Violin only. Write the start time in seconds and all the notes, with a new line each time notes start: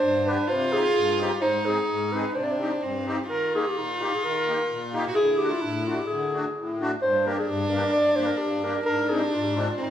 Already playing: D4
0.48 F4
1.41 D#4
2.35 D4
2.82 C4
3.27 F4
5.08 F#4
5.16 E4
7.02 D4
8.84 D4
9.78 C4